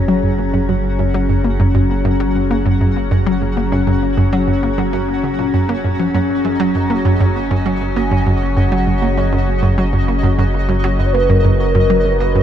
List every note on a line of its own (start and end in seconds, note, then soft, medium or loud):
0.00 6.11 F#1 medium
0.00 12.43 F#3 medium
0.00 12.43 C#4 medium
0.00 12.43 F#4 medium
0.00 12.43 G#4 medium
0.00 6.17 F#5 medium
0.00 12.43 A#5 medium
0.08 0.20 F#3 loud
0.23 0.31 F#2 medium
0.38 0.43 A#3 medium
0.54 0.62 F#2 loud
0.69 0.74 F#2 loud
0.99 1.07 F#2 loud
1.14 1.26 F#3 medium
1.29 1.37 F#2 medium
1.44 1.49 A#3 medium
1.60 1.68 F#2 loud
1.75 1.80 F#2 loud
2.05 2.13 F#2 loud
2.20 2.32 F#3 medium
2.35 2.43 F#2 medium
2.51 2.55 A#3 medium
2.66 2.74 F#2 loud
2.81 2.86 F#2 medium
3.11 3.19 F#2 loud
3.27 3.38 F#3 loud
3.42 3.49 F#2 medium
3.57 3.62 A#3 medium
3.72 3.80 F#2 loud
3.87 3.92 F#2 loud
4.17 4.25 F#2 medium
4.33 4.44 F#3 loud
4.48 4.56 F#2 medium
4.63 4.68 A#3 medium
4.78 4.86 F#2 loud
4.93 4.98 F#2 loud
5.24 5.31 C#3 medium
5.39 5.46 A#2 medium
5.54 5.62 F#2 medium
5.69 5.77 A#3 medium
5.84 5.92 F#2 medium
5.99 6.07 F3 medium
6.14 12.43 F#1 medium
6.14 6.19 F#2 loud
6.14 12.43 D#5 medium
6.45 6.52 F#2 loud
6.60 6.72 F#3 medium
6.75 6.83 F#2 medium
6.90 6.95 A#3 medium
7.05 7.13 F#2 loud
7.20 7.25 F#2 loud
7.36 8.59 G#5 loud
7.51 7.59 F#2 loud
7.66 7.78 F#3 medium
7.81 7.89 F#2 medium
7.96 8.01 A#3 medium
8.11 8.19 F#2 loud
8.27 8.31 F#2 medium
8.57 8.65 F#2 loud
8.57 9.19 F#5 loud
8.72 8.84 F#3 loud
8.87 8.95 F#2 medium
9.02 9.07 A#3 medium
9.17 9.25 F#2 loud
9.17 10.08 C#5 medium
9.33 9.37 F#2 loud
9.63 9.71 F#2 loud
9.78 9.90 F#3 medium
9.93 10.01 F#2 medium
10.08 10.13 A#3 medium
10.23 10.31 F#2 loud
10.38 10.43 F#2 loud
10.69 10.77 F#2 loud
10.84 10.96 F#3 loud
10.99 11.07 F#2 medium
10.99 11.08 B4 medium
11.06 11.14 C#5 medium
11.13 11.19 A#3 medium
11.13 11.31 B4 medium
11.29 11.37 F#2 loud
11.29 12.22 A#4 medium
11.45 11.49 F#2 loud
11.75 11.83 F#2 loud
11.90 12.02 F#3 loud
12.05 12.13 F#2 medium
12.20 12.25 A#3 medium
12.20 12.43 B4 medium
12.35 12.43 F#2 loud